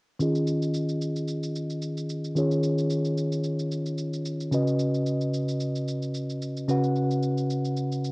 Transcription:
0.19 2.32 D#3 medium
0.19 2.32 C#4 medium
0.19 2.33 F4 medium
0.19 2.33 G#4 medium
0.19 2.33 D#5 medium
0.19 shaker medium
0.35 shaker soft
0.47 shaker medium
0.62 shaker medium
0.74 shaker medium
0.89 shaker soft
1.01 shaker medium
1.16 shaker medium
1.28 shaker medium
1.43 shaker medium
1.56 shaker medium
1.70 shaker soft
1.82 shaker medium
1.97 shaker medium
2.10 shaker medium
2.24 shaker medium
2.35 4.48 D#3 medium
2.35 4.49 C#4 medium
2.35 4.49 F4 medium
2.35 4.49 G#4 medium
2.35 4.50 C#5 medium
2.35 shaker medium
2.51 shaker soft
2.63 shaker medium
2.78 shaker medium
2.90 shaker medium
3.05 shaker soft
3.18 shaker medium
3.32 shaker medium
3.44 shaker medium
3.59 shaker medium
3.72 shaker medium
3.86 shaker soft
3.98 shaker medium
4.14 shaker medium
4.26 shaker medium
4.41 shaker medium
4.51 6.64 C#3 medium
4.51 6.65 C#4 medium
4.51 6.65 F#4 medium
4.51 6.65 B4 medium
4.51 6.66 D#5 medium
4.51 shaker medium
4.67 shaker soft
4.79 shaker medium
4.95 shaker medium
5.06 shaker medium
5.21 shaker soft
5.34 shaker medium
5.49 shaker medium
5.60 shaker medium
5.76 shaker medium
5.88 shaker medium
6.02 shaker soft
6.14 shaker medium
6.30 shaker medium
6.42 shaker medium
6.57 shaker medium
6.68 8.12 C#3 medium
6.68 8.12 C#4 medium
6.68 8.12 F#4 medium
6.68 8.12 B4 medium
6.68 8.12 F#5 medium
6.68 shaker medium
6.84 shaker soft
6.96 shaker medium
7.11 shaker medium
7.23 shaker medium
7.37 shaker soft
7.50 shaker medium
7.65 shaker medium
7.77 shaker medium
7.92 shaker medium
8.04 shaker medium

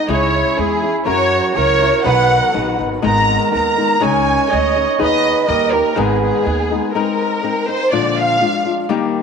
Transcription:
0.00 0.11 D#4 medium
0.08 0.41 C#2 loud
0.08 0.58 C#3 medium
0.08 0.57 G#3 medium
0.08 0.57 C#4 medium
0.08 1.09 E4 medium
0.08 0.58 E4 medium
0.08 0.58 G#4 medium
0.08 0.56 C#5 medium
0.58 0.90 E2 medium
0.58 0.84 G#3 medium
0.58 0.82 C#4 medium
0.58 0.81 E4 medium
0.58 0.96 G#4 medium
0.58 0.81 G#4 medium
0.82 1.04 C#4 soft
0.82 1.05 E4 soft
0.82 1.06 G#4 soft
1.05 1.39 F#2 medium
1.05 1.53 F#3 medium
1.05 1.54 C#4 medium
1.05 1.55 E4 medium
1.05 1.58 F#4 medium
1.05 1.55 A#4 medium
1.05 1.53 C#5 medium
1.55 1.88 C#2 medium
1.55 1.81 F#3 medium
1.55 1.81 C#4 medium
1.55 1.81 E4 soft
1.55 1.79 A#4 medium
1.55 2.05 A#4 loud
1.55 2.02 C#5 medium
1.80 2.04 C#4 soft
1.80 2.05 E4 soft
1.80 2.05 A#4 soft
2.04 2.37 B1 loud
2.04 2.54 B2 medium
2.04 3.02 D#3 medium
2.04 2.52 F#3 medium
2.04 2.53 B3 medium
2.04 2.54 D#4 medium
2.04 2.53 B4 medium
2.04 2.76 B4 medium
2.04 2.80 F#5 medium
2.53 2.78 A#1 medium
2.53 2.78 F#3 medium
2.53 2.78 B3 medium
2.53 2.78 D#4 medium
2.53 2.77 B4 medium
2.78 3.02 G#1 medium
2.78 3.02 F#3 soft
2.78 3.01 B3 soft
2.78 3.01 D#4 soft
2.78 3.03 B4 soft
3.02 3.36 G#1 medium
3.02 3.53 G#2 medium
3.02 4.00 D#3 medium
3.02 3.50 G#3 medium
3.02 3.50 B3 medium
3.02 3.52 D#4 medium
3.02 3.52 A#4 medium
3.02 4.04 A#4 medium
3.06 3.52 A#5 medium
3.51 3.86 D#2 medium
3.51 3.78 G#3 soft
3.51 3.77 B3 medium
3.51 3.77 D#4 medium
3.51 3.76 A#4 medium
3.51 4.00 A#5 medium
3.77 3.99 G#3 soft
3.77 4.00 B3 soft
3.77 4.00 D#4 soft
3.77 4.01 A#4 soft
4.00 4.35 C#2 medium
4.00 4.51 C#3 medium
4.00 4.48 G#3 medium
4.00 4.49 C#4 medium
4.00 4.50 D#4 medium
4.00 4.50 G#4 medium
4.00 5.02 C#5 loud
4.00 4.52 G#5 medium
4.49 4.84 D2 medium
4.49 4.76 G#3 medium
4.49 4.76 C#4 medium
4.49 4.76 D#4 medium
4.49 4.75 G#4 medium
4.49 4.89 D#5 medium
4.76 4.98 C#4 soft
4.76 4.99 D#4 soft
4.76 4.98 G#4 soft
4.98 5.32 D#2 medium
4.98 5.48 D#3 medium
4.98 5.48 B3 medium
4.98 5.49 D#4 medium
4.98 5.48 G#4 loud
4.98 5.49 B4 medium
4.98 5.46 D#5 medium
5.48 5.80 D#2 loud
5.48 5.73 G3 medium
5.48 5.73 A#3 soft
5.48 5.73 D#4 medium
5.48 5.72 G4 medium
5.48 5.96 A#4 medium
5.48 5.71 D#5 medium
5.72 5.95 A#3 soft
5.72 5.95 D#4 soft
5.72 5.96 G4 soft
5.72 5.96 A#4 medium
5.95 6.29 G#1 loud
5.95 6.45 G#2 medium
5.95 6.45 D#3 medium
5.95 6.44 G#3 medium
5.95 6.44 B3 medium
5.95 6.44 D#4 medium
5.95 6.46 G#4 loud
5.95 6.22 G#4 medium
5.95 6.67 B4 medium
6.23 6.92 G#4 medium
6.44 6.78 D#2 medium
6.44 6.70 G#3 medium
6.44 6.71 B3 medium
6.44 6.70 D#4 medium
6.44 6.69 G#4 medium
6.71 6.94 G#3 soft
6.71 6.95 B3 soft
6.71 6.94 D#4 soft
6.71 6.95 G#4 soft
6.94 7.42 G#3 medium
6.94 7.42 C4 medium
6.94 7.43 D#4 medium
6.94 7.65 A#4 medium
6.94 7.44 A#4 medium
7.43 7.69 G#3 soft
7.43 7.69 C4 medium
7.43 7.68 D#4 medium
7.43 7.67 A#4 medium
7.67 7.92 C4 soft
7.67 7.93 D#4 soft
7.67 7.92 A#4 soft
7.67 7.92 C5 medium
7.92 8.42 A#2 medium
7.92 8.41 D3 medium
7.92 8.38 F3 medium
7.92 8.39 G#3 medium
7.92 8.39 D4 medium
7.92 8.40 F4 medium
7.92 8.18 D5 medium
8.18 8.67 F5 medium
8.39 8.65 F3 medium
8.39 8.65 G#3 medium
8.39 8.64 D4 medium
8.39 8.63 F4 soft
8.64 8.89 F3 soft
8.64 8.89 G#3 soft
8.64 8.90 D4 soft
8.64 8.89 F4 soft
8.89 9.22 D#3 medium
8.89 9.22 G3 medium
8.89 9.22 A#3 loud
8.89 9.22 D#4 medium
8.89 9.22 G4 medium

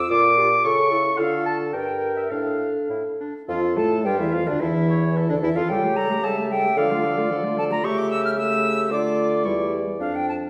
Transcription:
0.00 0.10 E6 loud
0.00 0.11 E6 loud
0.10 0.57 A#2 loud
0.10 0.23 F4 medium
0.10 0.65 D6 loud
0.10 0.63 D6 loud
0.37 0.49 F4 medium
0.37 0.49 G4 medium
0.63 1.12 C#3 medium
0.63 0.76 A4 medium
0.63 0.93 A4 medium
0.63 1.19 C#6 loud
0.91 1.21 E4 medium
0.91 1.03 A4 medium
1.17 1.75 D3 medium
1.17 1.54 F4 loud
1.17 1.75 A4 medium
1.17 1.45 F5 loud
1.17 1.47 F5 medium
1.45 1.73 A5 medium
1.45 1.58 A5 loud
1.73 2.31 G2 medium
1.73 2.32 A#4 medium
1.73 2.27 A#4 medium
1.73 2.15 G5 medium
2.16 2.22 E5 medium
2.16 2.33 E5 medium
2.31 2.72 A2 medium
2.31 2.89 D4 medium
2.31 3.18 A4 medium
2.31 2.88 F5 medium
2.31 2.90 F5 medium
2.89 3.03 A2 medium
2.89 3.03 E4 medium
3.20 3.33 D4 medium
3.48 3.75 F2 medium
3.48 3.79 F3 medium
3.48 3.79 F4 loud
3.48 4.01 A4 medium
3.48 3.55 F5 medium
3.76 4.06 A2 medium
3.76 4.07 A3 medium
3.76 4.07 A4 medium
3.76 4.03 A5 loud
4.04 4.20 G2 loud
4.04 4.21 G3 medium
4.04 4.60 F4 medium
4.04 4.21 G4 medium
4.04 4.18 G5 loud
4.19 4.34 E2 medium
4.19 4.35 E3 medium
4.19 4.35 E4 medium
4.19 4.33 E5 medium
4.32 4.46 F2 medium
4.32 4.47 F3 medium
4.32 4.49 F4 medium
4.32 4.49 F5 medium
4.46 4.52 D2 medium
4.46 4.60 D3 medium
4.46 4.62 D4 medium
4.46 4.61 D5 medium
4.60 5.31 E2 medium
4.60 5.28 E3 loud
4.60 5.29 E4 loud
4.60 4.74 A4 medium
4.60 5.31 E5 medium
4.89 5.18 C#5 medium
5.16 5.70 A4 medium
5.29 5.42 D2 medium
5.29 5.35 D3 medium
5.29 5.35 D4 medium
5.29 5.41 D5 medium
5.41 5.49 E2 medium
5.41 5.58 E3 medium
5.41 5.49 E4 medium
5.41 5.57 E5 loud
5.56 5.62 F2 medium
5.56 5.70 F3 medium
5.56 5.70 F4 medium
5.56 5.70 F5 loud
5.69 6.17 C#3 medium
5.69 5.85 G3 medium
5.69 6.26 G4 medium
5.69 5.86 A4 medium
5.69 5.98 G5 loud
5.84 5.98 A3 medium
5.84 5.99 G4 medium
5.96 6.11 G3 medium
5.96 6.13 A4 medium
5.96 6.25 A#5 loud
6.10 6.23 A3 medium
6.10 6.24 G4 medium
6.23 6.71 C#3 medium
6.23 6.39 G3 medium
6.23 6.39 A4 medium
6.23 6.78 E5 loud
6.23 6.50 A5 loud
6.37 6.52 A3 medium
6.37 6.53 G4 medium
6.50 6.66 G3 medium
6.50 6.66 A4 medium
6.50 6.79 G5 loud
6.64 6.77 A3 medium
6.64 6.77 G4 medium
6.77 7.24 D3 loud
6.77 6.93 F3 medium
6.77 6.92 A4 medium
6.77 7.87 D5 loud
6.77 7.57 F5 loud
6.91 7.05 A3 medium
6.91 7.07 F4 medium
7.04 7.19 F3 medium
7.04 7.20 A4 medium
7.18 7.30 A3 medium
7.18 7.31 F4 medium
7.30 7.78 D3 medium
7.30 7.46 F3 medium
7.30 7.46 A4 medium
7.45 7.59 A3 medium
7.45 7.59 F4 medium
7.58 7.73 F3 medium
7.58 7.73 A4 medium
7.58 7.64 A5 loud
7.71 7.84 A3 medium
7.71 7.83 F4 medium
7.71 7.85 A#5 loud
7.84 8.93 C#3 loud
7.84 8.34 A3 medium
7.84 8.34 G4 loud
7.84 8.93 E5 loud
7.84 7.99 C#6 loud
7.98 8.09 D6 loud
8.10 8.24 E6 loud
8.25 8.31 F6 loud
8.37 8.90 A3 medium
8.37 8.93 G4 medium
8.37 8.90 E6 loud
8.91 9.44 D3 medium
8.91 9.46 A3 medium
8.91 9.46 F4 medium
8.91 10.27 D5 loud
8.91 9.46 D6 loud
9.45 9.98 E2 medium
9.45 9.83 G3 medium
9.45 9.83 E4 medium
9.45 9.72 C#6 medium
9.99 10.50 F2 medium
9.99 10.50 F3 medium
9.99 10.50 D4 medium
9.99 10.17 F5 medium
10.15 10.28 G5 medium
10.29 10.35 A5 medium

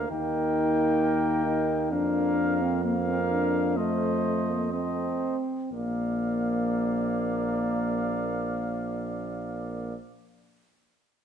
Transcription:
0.11 1.93 D#2 medium
0.11 1.88 A#3 medium
0.11 1.42 D#4 medium
0.11 1.89 A#4 medium
0.11 1.88 G5 medium
1.46 1.93 D#4 medium
1.91 5.38 F2 medium
1.91 2.82 A#3 medium
1.91 2.63 D4 medium
1.91 2.82 A#4 medium
1.91 2.82 F5 medium
2.61 2.83 C4 medium
2.84 2.94 A#3 medium
2.84 3.79 A#3 medium
2.84 3.76 A#4 medium
2.84 3.78 F5 medium
3.08 3.18 C4 medium
3.30 3.78 D4 medium
3.77 4.51 A3 medium
3.77 4.73 A3 soft
3.77 4.72 C5 medium
3.77 4.71 D#5 medium
4.50 4.72 A#3 medium
4.72 5.37 A3 soft
4.72 5.70 C4 medium
4.72 5.37 C5 medium
4.72 5.36 D#5 medium
5.72 9.93 A#1 medium
5.72 9.94 A#3 medium
5.72 9.94 D5 medium
5.72 9.94 F5 medium

